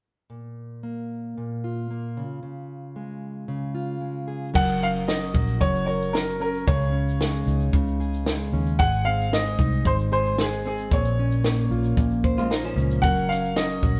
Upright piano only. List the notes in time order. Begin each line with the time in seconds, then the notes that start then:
4.55 F#5
4.83 F5
5.08 D#5
5.61 C#5
5.86 C#5
6.13 A#4
6.41 A#4
6.67 C#5
8.79 F#5
9.05 F5
9.33 D#5
9.87 C5
10.13 C5
10.41 G#4
10.67 G#4
10.93 C#5
13.02 F#5
13.29 F5
13.56 D#5